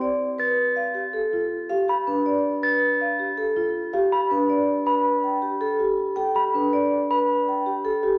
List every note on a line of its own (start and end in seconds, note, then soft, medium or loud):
0.01 0.26 D5 medium
0.38 0.63 B4 soft
0.38 0.64 A6 soft
0.76 1.01 F5 soft
0.95 1.19 G4 soft
1.13 1.38 A4 medium
1.33 1.57 F4 soft
1.70 1.94 G4 medium
1.70 1.94 F5 medium
1.88 2.13 G4 soft
1.88 2.13 B5 soft
2.07 2.32 D4 soft
2.07 2.32 B4 soft
2.26 2.50 D5 medium
2.63 2.87 B4 soft
2.63 2.87 A6 medium
3.01 3.25 F5 medium
3.19 3.43 G4 soft
3.37 3.62 A4 medium
3.57 3.81 F4 medium
3.93 4.18 G4 medium
3.93 4.18 F5 medium
4.12 4.37 G4 medium
4.12 4.37 B5 medium
4.31 4.55 D4 medium
4.31 4.55 B4 medium
4.50 4.74 D5 medium
4.86 5.11 B4 soft
4.86 5.11 B5 medium
5.24 5.48 G5 medium
5.42 5.67 G4 medium
5.61 5.85 A4 medium
5.80 6.04 G4 medium
6.16 6.41 A4 medium
6.16 6.41 G5 medium
6.35 6.60 G4 medium
6.35 6.60 B5 medium
6.54 6.79 D4 medium
6.54 6.79 B4 medium
6.73 6.97 D5 medium
7.11 7.35 B4 medium
7.11 7.35 B5 medium
7.49 7.72 G5 medium
7.66 7.91 G4 medium
7.85 8.09 A4 medium
8.03 8.18 G4 medium